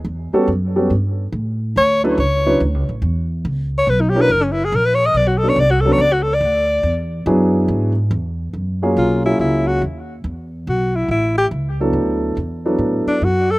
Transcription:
0.05 0.31 E2 medium
0.33 0.47 G3 medium
0.33 0.47 B3 medium
0.33 0.47 C#4 medium
0.33 0.47 F#4 medium
0.33 0.47 A4 medium
0.33 muted upright bass stroke soft
0.48 0.89 F#2 medium
0.76 0.89 G3 medium
0.76 0.89 B3 medium
0.76 0.89 C#4 medium
0.76 0.89 F#4 medium
0.76 0.89 A4 medium
0.90 1.31 G2 medium
1.32 1.74 A2 medium
1.76 2.17 D2 medium
1.76 2.02 C#5 medium
2.04 2.17 F#3 medium
2.04 2.16 C#4 medium
2.04 2.17 D4 medium
2.04 2.17 E4 medium
2.04 2.20 A4 medium
2.04 2.17 B4 medium
2.18 2.59 C#2 medium
2.18 2.61 C#5 medium
2.46 2.59 F#3 medium
2.46 2.59 C#4 medium
2.46 2.59 D4 medium
2.46 2.59 E4 medium
2.46 2.59 B4 medium
2.60 2.74 D2 medium
2.74 2.88 C#2 medium
2.89 3.01 A1 medium
3.02 3.43 E2 medium
3.45 3.86 C#2 medium
3.78 3.91 C#5 medium
3.87 4.28 B1 medium
3.87 4.02 B4 medium
4.01 4.11 D#4 medium
4.10 4.23 G4 medium
4.15 4.28 F#3 medium
4.15 4.29 C#4 medium
4.15 4.28 D4 medium
4.15 4.28 E4 medium
4.15 4.29 A#4 medium
4.21 4.33 B4 loud
4.29 4.71 F#1 medium
4.29 4.44 A#4 loud
4.43 4.54 C#4 medium
4.52 4.66 E4 medium
4.65 4.77 G#4 medium
4.72 5.13 A#1 medium
4.72 4.88 A#4 medium
4.86 4.96 B4 medium
4.95 5.07 C#5 loud
5.06 5.19 D#5 loud
5.14 5.55 B1 medium
5.14 5.29 D5 medium
5.27 5.39 F#4 medium
5.38 5.50 A4 loud
5.43 5.56 F#3 medium
5.43 5.56 B3 medium
5.43 5.56 C#4 medium
5.43 5.56 D4 medium
5.43 5.56 A4 medium
5.49 5.61 C#5 medium
5.56 5.98 C2 medium
5.60 5.72 D5 loud
5.71 5.82 F#4 medium
5.81 5.94 A4 medium
5.85 5.98 F#3 medium
5.85 5.98 B3 medium
5.85 5.98 C#4 medium
5.85 5.98 D4 medium
5.85 5.98 A4 medium
5.92 6.03 C#5 loud
5.98 6.40 C#2 medium
5.98 6.14 D5 loud
6.13 6.24 F#4 medium
6.23 6.36 A4 loud
6.34 6.98 D5 medium
6.41 6.82 D2 medium
6.83 7.25 E2 medium
7.26 7.68 F#2 medium
7.26 7.92 F#3 medium
7.26 7.92 B3 medium
7.26 7.92 D4 medium
7.26 7.92 E4 medium
7.26 7.92 G#4 medium
7.68 8.10 G#2 medium
8.11 8.52 E2 medium
8.53 8.95 F#2 medium
8.82 9.22 F#3 medium
8.82 9.22 A#3 medium
8.82 9.22 C#4 medium
8.82 9.22 F4 medium
8.82 9.22 G#4 medium
8.97 9.38 B1 medium
8.97 9.23 F4 medium
9.25 9.79 F#3 medium
9.25 9.79 A#3 medium
9.25 9.80 C#4 soft
9.25 9.39 E4 medium
9.25 9.79 F4 medium
9.25 9.80 G#4 medium
9.39 9.81 C#2 medium
9.39 9.69 E4 medium
9.67 9.82 F#4 medium
9.82 10.23 D#2 medium
10.24 10.65 E2 medium
10.67 11.08 B1 medium
10.67 10.97 F#4 medium
10.96 11.10 E4 medium
11.08 11.50 A1 medium
11.08 11.36 E4 medium
11.38 11.47 G4 medium
11.51 11.93 C#2 medium
11.80 12.34 F#3 medium
11.80 12.34 B3 medium
11.80 12.34 D4 medium
11.80 12.35 E4 medium
11.80 12.35 A4 medium
11.93 12.35 D2 medium
12.37 12.78 E2 medium
12.65 13.19 F#3 medium
12.65 13.20 B3 medium
12.65 13.20 D4 medium
12.65 13.20 E4 medium
12.65 13.20 A4 medium
12.78 13.05 A2 medium
13.07 13.26 D4 medium
13.07 muted upright bass stroke soft
13.21 13.59 F#2 medium
13.21 13.52 F#4 medium
13.51 13.59 A4 medium

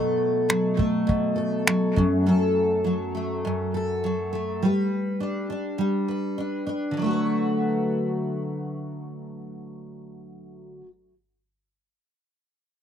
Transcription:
0.00 1.06 B2 medium
0.00 0.48 F#3 medium
0.00 0.77 A3 medium
0.00 1.35 A4 medium
0.49 1.66 F#3 medium
0.49 finger snap medium
0.77 3.14 A3 medium
0.77 kick medium
1.07 1.96 B2 medium
1.07 kick medium
1.36 2.26 A4 medium
1.67 2.84 F#3 medium
1.67 finger snap medium
1.96 2.25 F#2 medium
1.96 kick medium
2.26 3.43 F#2 medium
2.26 3.73 A4 medium
2.84 4.03 F#3 soft
3.15 4.31 A3 soft
3.45 4.70 F#2 medium
3.74 4.62 A4 medium
4.04 4.62 F#3 medium
4.33 4.69 A3 medium
4.62 5.77 G3 medium
4.62 6.08 B4 soft
5.20 5.49 D4 soft
5.50 6.37 D4 medium
5.78 6.97 G3 medium
6.08 7.05 B4 soft
6.38 6.66 D4 medium
6.67 7.01 D4 soft
6.91 10.81 D3 medium
6.97 10.84 F#3 medium
7.02 10.86 A3 medium
7.06 10.88 F#4 medium
7.11 10.90 B4 medium

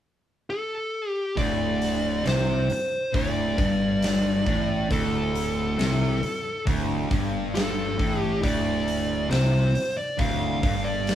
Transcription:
0.50 1.10 A4 medium
1.10 1.34 G4 medium
1.37 2.22 D1 medium
1.37 2.24 D2 loud
1.37 2.27 D5 loud
1.37 kick medium
1.37 open hi-hat medium
1.82 snare soft
1.82 open hi-hat medium
2.25 2.67 C2 medium
2.25 2.68 C3 medium
2.25 2.71 C5 loud
2.25 snare loud
2.25 open hi-hat medium
2.70 3.12 C5 loud
2.70 muted distorted electric guitar stroke medium
2.70 muted fingered electric bass stroke soft
2.70 open hi-hat medium
3.13 3.55 D1 loud
3.13 3.57 D2 loud
3.13 4.97 D5 medium
3.13 kick loud
3.13 open hi-hat medium
3.58 4.43 G1 medium
3.58 4.45 G2 loud
3.58 kick loud
3.58 open hi-hat medium
4.02 snare loud
4.02 open hi-hat medium
4.46 4.88 A1 medium
4.46 4.89 A2 medium
4.46 kick medium
4.46 open hi-hat soft
4.90 5.75 D1 loud
4.90 5.77 D2 medium
4.90 6.64 A4 medium
4.90 kick medium
4.90 open hi-hat medium
5.35 open hi-hat medium
5.78 6.19 C2 medium
5.78 6.22 C3 medium
5.78 snare loud
5.78 open hi-hat medium
6.22 muted fingered electric bass stroke soft
6.22 muted distorted electric guitar stroke medium
6.22 open hi-hat soft
6.66 7.08 D1 loud
6.66 7.09 D2 loud
6.66 kick loud
6.66 open hi-hat medium
7.10 7.95 G1 medium
7.10 7.97 G2 loud
7.10 kick loud
7.10 open hi-hat medium
7.55 8.20 A4 medium
7.55 snare loud
7.55 open hi-hat medium
7.98 8.40 A1 loud
7.98 8.41 A2 medium
7.98 kick medium
7.98 open hi-hat soft
8.20 8.46 G4 medium
8.42 9.27 D1 medium
8.42 9.29 D2 loud
8.42 9.27 D5 medium
8.42 kick loud
8.42 open hi-hat medium
8.88 open hi-hat medium
9.30 9.72 C2 loud
9.30 9.73 C3 medium
9.30 9.97 C5 loud
9.30 snare loud
9.30 open hi-hat medium
9.74 muted distorted electric guitar stroke medium
9.74 muted fingered electric bass stroke soft
9.74 open hi-hat medium
9.97 10.20 D5 loud
10.18 10.60 D1 loud
10.18 10.61 D2 loud
10.18 10.87 F5 medium
10.18 kick loud
10.18 open hi-hat medium
10.62 11.15 G1 medium
10.62 11.15 G2 loud
10.62 kick loud
10.62 open hi-hat medium
10.84 11.15 D5 loud
11.07 snare loud
11.07 open hi-hat medium

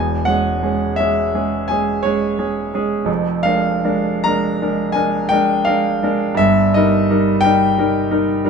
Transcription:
0.00 0.27 E1 medium
0.00 0.24 E2 medium
0.00 0.27 G#5 medium
0.25 0.60 G#3 soft
0.25 0.60 C#4 soft
0.25 0.61 G#4 soft
0.25 0.97 F#5 medium
0.63 0.95 G#3 soft
0.63 0.96 C#4 soft
0.63 0.96 G#4 soft
0.96 1.31 G#3 soft
0.96 1.32 C#4 soft
0.96 1.69 E5 medium
1.00 1.32 G#4 soft
1.34 1.66 G#3 soft
1.34 1.67 C#4 soft
1.34 1.67 G#4 soft
1.68 2.02 G#3 soft
1.68 2.02 C#4 soft
1.68 2.02 G#4 soft
1.68 2.04 G#5 medium
2.03 2.36 G#3 soft
2.03 2.36 C#4 soft
2.03 2.36 G#4 soft
2.03 3.07 C#5 medium
2.39 2.69 G#3 soft
2.39 2.70 C#4 soft
2.39 2.69 G#4 soft
2.74 3.05 G#3 soft
2.74 3.05 C#4 soft
2.74 3.06 G#4 medium
3.05 3.43 F1 medium
3.05 3.43 F2 medium
3.43 3.82 G#3 soft
3.43 3.82 D4 soft
3.43 3.82 A#4 soft
3.43 4.24 F5 medium
3.84 4.21 G#3 soft
3.84 4.21 D4 soft
3.84 4.21 A#4 soft
4.24 4.58 G#3 soft
4.24 4.58 D4 soft
4.24 4.59 A#4 soft
4.24 4.96 A#5 medium
4.62 4.93 G#3 soft
4.62 4.94 D4 soft
4.62 4.94 A#4 soft
4.92 5.28 G#3 soft
4.92 5.29 D4 soft
4.92 5.29 A#4 soft
4.92 5.31 G#5 medium
5.29 5.64 G#3 soft
5.29 5.65 D4 soft
5.29 5.65 A#4 medium
5.29 5.67 G5 medium
5.65 5.99 G#3 soft
5.65 6.00 D4 soft
5.65 6.00 A#4 soft
5.65 6.38 F5 medium
6.03 6.36 G#3 medium
6.03 6.35 D4 medium
6.03 6.36 A#4 medium
6.35 6.74 G1 medium
6.35 6.72 G2 medium
6.35 6.74 E5 medium
6.74 7.08 G3 medium
6.74 7.07 D#4 soft
6.74 7.08 A#4 medium
6.74 7.44 D#5 medium
7.10 7.41 G3 soft
7.10 7.41 D#4 soft
7.10 7.41 A#4 medium
7.41 7.75 G3 soft
7.41 7.75 A#4 medium
7.41 8.50 G5 loud
7.45 7.75 D#4 soft
7.78 8.08 G3 soft
7.78 8.09 D#4 soft
7.78 8.09 A#4 medium
8.11 8.41 G3 soft
8.11 8.42 D#4 soft
8.11 8.42 A#4 medium
8.44 8.50 G3 medium
8.44 8.50 D#4 medium
8.44 8.50 A#4 medium

